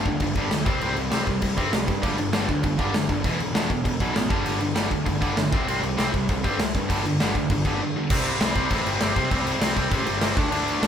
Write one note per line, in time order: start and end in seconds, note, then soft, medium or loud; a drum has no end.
0.05 0.19 D2 medium
0.05 0.20 G2 medium
0.05 0.20 D3 medium
0.05 kick medium
0.05 crash medium
0.20 0.34 G1 loud
0.20 0.35 G2 medium
0.20 0.35 D3 loud
0.20 kick medium
0.20 crash medium
0.35 0.49 G1 medium
0.35 0.49 G2 medium
0.35 0.50 D3 loud
0.35 0.51 G3 loud
0.35 kick medium
0.35 crash medium
0.50 0.65 D2 medium
0.50 0.64 G2 medium
0.50 0.65 D3 medium
0.50 snare loud
0.50 crash medium
0.65 0.80 C2 medium
0.65 0.80 C3 medium
0.65 0.81 G3 medium
0.65 0.81 C4 loud
0.65 kick loud
0.65 crash medium
0.81 0.95 C2 loud
0.81 0.95 C3 medium
0.81 0.96 G3 medium
0.81 0.96 C4 medium
0.81 crash medium
0.96 1.10 C2 medium
0.96 1.09 C3 medium
0.96 1.10 G3 medium
0.96 crash medium
1.11 1.26 C2 medium
1.11 1.25 C3 medium
1.11 1.26 G3 medium
1.11 1.26 C4 medium
1.11 snare loud
1.11 crash medium
1.27 1.41 C2 medium
1.27 1.41 C3 medium
1.27 1.41 G3 medium
1.27 kick medium
1.27 crash medium
1.42 1.56 C2 medium
1.42 1.56 C3 medium
1.42 1.56 G3 medium
1.42 kick medium
1.42 crash medium
1.57 1.71 G2 medium
1.57 1.70 C3 medium
1.57 1.70 G3 medium
1.57 1.72 C4 loud
1.57 kick medium
1.57 crash medium
1.71 1.86 C2 medium
1.71 1.86 C3 medium
1.71 1.86 G3 medium
1.71 snare loud
1.71 crash medium
1.87 2.05 G2 loud
1.87 2.01 C3 medium
1.87 2.01 G3 medium
1.87 kick medium
1.87 crash medium
2.02 2.17 G1 medium
2.02 2.17 G2 medium
2.02 2.17 D3 medium
2.02 2.18 G3 loud
2.02 kick loud
2.02 crash medium
2.18 2.32 G1 medium
2.18 2.32 G2 medium
2.18 2.32 D3 medium
2.18 crash medium
2.33 2.48 G1 medium
2.33 2.47 G2 medium
2.33 2.48 D3 medium
2.33 2.48 G3 loud
2.33 snare loud
2.33 crash medium
2.49 2.62 D2 medium
2.49 2.63 G2 medium
2.49 2.63 D3 medium
2.49 kick medium
2.49 crash medium
2.63 2.77 G1 loud
2.63 2.77 G2 medium
2.63 2.78 D3 medium
2.63 kick medium
2.63 crash medium
2.79 2.93 G1 medium
2.79 2.92 G2 medium
2.79 2.92 D3 medium
2.79 2.93 G3 loud
2.79 kick medium
2.79 crash medium
2.93 3.08 G1 medium
2.93 3.08 G2 medium
2.93 3.07 D3 medium
2.93 snare loud
2.93 crash medium
3.09 3.23 G1 medium
3.09 3.23 G2 medium
3.09 3.23 D3 medium
3.09 kick medium
3.09 crash medium
3.24 3.38 E1 medium
3.24 3.38 E2 medium
3.24 3.39 B2 medium
3.24 3.40 E3 loud
3.24 kick loud
3.24 crash medium
3.40 3.53 E1 loud
3.40 3.53 E2 medium
3.40 3.54 B2 medium
3.40 crash medium
3.55 3.69 E1 medium
3.55 3.69 E2 medium
3.55 3.69 B2 medium
3.55 3.70 E3 medium
3.55 snare loud
3.55 crash medium
3.70 3.84 E1 medium
3.70 3.83 E2 medium
3.70 3.83 B2 medium
3.70 kick medium
3.70 crash medium
3.84 3.99 E1 loud
3.84 3.98 E2 medium
3.84 3.99 B2 medium
3.84 kick medium
3.84 crash medium
4.00 4.14 B1 medium
4.00 4.13 E2 medium
4.00 4.13 B2 loud
4.00 4.15 E3 loud
4.00 kick medium
4.00 crash medium
4.14 4.29 A1 medium
4.14 4.28 E2 medium
4.14 4.28 B2 medium
4.14 snare loud
4.14 crash medium
4.29 4.44 G1 medium
4.29 4.42 G2 medium
4.29 4.43 D3 medium
4.29 4.43 G3 medium
4.29 kick loud
4.29 crash medium
4.43 4.59 G1 medium
4.43 4.59 G2 medium
4.43 4.59 D3 medium
4.43 4.60 G3 medium
4.43 crash medium
4.60 4.74 G1 medium
4.60 4.74 G2 medium
4.60 4.74 D3 medium
4.60 crash medium
4.75 4.90 G1 medium
4.75 4.89 G2 medium
4.75 4.89 D3 loud
4.75 4.91 G3 loud
4.75 snare loud
4.75 crash medium
4.90 5.05 D2 medium
4.90 5.05 G2 medium
4.90 5.05 D3 medium
4.90 kick medium
4.90 crash medium
5.06 5.20 G1 loud
5.06 5.20 G2 medium
5.06 5.20 D3 medium
5.06 kick medium
5.06 crash medium
5.21 5.36 G1 medium
5.21 5.36 G2 medium
5.21 5.36 D3 medium
5.21 5.36 G3 loud
5.21 kick medium
5.21 crash medium
5.37 5.53 G1 medium
5.37 5.51 G2 medium
5.37 5.51 D3 medium
5.37 snare loud
5.37 crash medium
5.52 5.66 C2 medium
5.52 5.66 C3 medium
5.52 5.67 G3 loud
5.52 5.67 C4 loud
5.52 kick loud
5.52 crash medium
5.67 5.81 C2 loud
5.67 5.81 C3 medium
5.67 5.82 G3 medium
5.67 5.82 C4 medium
5.67 crash medium
5.82 5.96 C2 medium
5.82 5.96 C3 medium
5.82 5.97 G3 medium
5.82 crash medium
5.97 6.12 C2 medium
5.97 6.11 C3 medium
5.97 6.11 G3 medium
5.97 6.12 C4 loud
5.97 snare loud
5.97 crash medium
6.12 6.27 C2 medium
6.12 6.26 C3 medium
6.12 6.27 G3 medium
6.12 kick medium
6.12 crash medium
6.29 6.42 C2 loud
6.29 6.42 C3 medium
6.29 6.43 G3 medium
6.29 kick loud
6.29 crash medium
6.44 6.58 G2 medium
6.44 6.58 C3 medium
6.44 6.58 G3 medium
6.44 6.58 C4 loud
6.44 kick medium
6.44 crash medium
6.59 6.72 C2 medium
6.59 6.72 C3 medium
6.59 6.73 G3 medium
6.59 snare loud
6.59 crash medium
6.75 6.88 G2 medium
6.75 6.88 C3 medium
6.75 6.88 G3 medium
6.75 kick medium
6.75 crash medium
6.89 7.03 G1 medium
6.89 7.03 G2 medium
6.89 7.04 D3 loud
6.89 7.04 G3 medium
6.89 kick loud
6.89 crash medium
7.05 7.18 G1 loud
7.05 7.18 G2 medium
7.05 7.19 D3 medium
7.05 crash medium
7.20 7.33 G1 medium
7.20 7.34 G2 medium
7.20 7.34 D3 medium
7.20 7.35 G3 medium
7.20 snare loud
7.20 crash medium
7.35 7.48 D2 medium
7.35 7.49 G2 medium
7.35 7.49 D3 medium
7.35 kick medium
7.35 crash medium
7.50 7.63 G1 loud
7.50 7.64 G2 medium
7.50 7.64 D3 medium
7.50 kick loud
7.50 crash medium
7.65 7.79 G1 medium
7.65 7.80 G2 loud
7.65 7.80 D3 medium
7.65 7.80 G3 loud
7.65 kick medium
7.65 crash medium
7.81 7.94 G2 medium
7.81 7.94 D3 medium
7.96 8.09 G2 medium
7.96 8.09 D3 medium
8.10 8.32 C2 loud
8.10 8.39 C3 medium
8.10 8.39 G3 loud
8.10 8.40 C4 loud
8.10 kick loud
8.10 crash loud
8.10 crash medium
8.26 crash medium
8.40 8.51 C2 medium
8.40 8.56 C3 medium
8.40 8.55 G3 loud
8.40 8.55 C4 medium
8.40 snare loud
8.40 crash medium
8.55 8.67 C2 medium
8.55 8.70 C3 medium
8.55 8.70 G3 medium
8.55 8.71 C4 medium
8.55 kick medium
8.55 crash medium
8.71 8.81 A1 loud
8.71 8.99 C3 loud
8.71 9.00 G3 loud
8.71 9.00 C4 loud
8.71 kick medium
8.71 crash medium
8.85 8.96 G1 medium
8.85 crash medium
9.00 9.12 G1 medium
9.00 9.15 C3 medium
9.00 9.14 G3 medium
9.00 9.14 C4 medium
9.00 snare loud
9.00 crash medium
9.15 9.29 C3 medium
9.15 9.27 C3 medium
9.15 9.29 G3 medium
9.15 9.30 C4 loud
9.15 kick medium
9.15 crash medium
9.30 9.53 C2 medium
9.30 9.59 C3 loud
9.30 9.60 G3 loud
9.30 9.61 C4 loud
9.30 kick loud
9.30 crash medium
9.47 crash medium
9.61 9.72 C2 medium
9.61 9.75 C3 medium
9.61 9.75 G3 medium
9.61 9.75 C4 loud
9.61 snare loud
9.61 crash loud
9.76 9.87 C2 medium
9.76 9.90 C3 medium
9.76 9.91 G3 medium
9.76 9.91 C4 medium
9.76 kick medium
9.76 crash medium
9.91 10.02 A1 loud
9.91 10.21 C3 loud
9.91 10.22 G3 loud
9.91 10.22 C4 loud
9.91 kick medium
9.91 crash medium
10.06 10.17 G1 medium
10.06 crash medium
10.21 10.32 G1 medium
10.21 10.36 C3 medium
10.21 10.36 G3 medium
10.21 10.37 C4 loud
10.21 snare loud
10.21 crash medium
10.37 10.48 D2 medium
10.37 10.52 D3 loud
10.37 10.52 A3 loud
10.37 10.51 D4 loud
10.37 kick loud
10.37 crash medium
10.52 10.73 D2 medium
10.52 10.82 D3 medium
10.52 10.81 A3 loud
10.52 10.81 D4 loud
10.52 crash medium
10.68 crash medium
10.82 10.87 D2 loud
10.82 10.87 D3 medium
10.82 10.87 A3 medium
10.82 10.87 D4 loud
10.82 snare loud
10.82 crash medium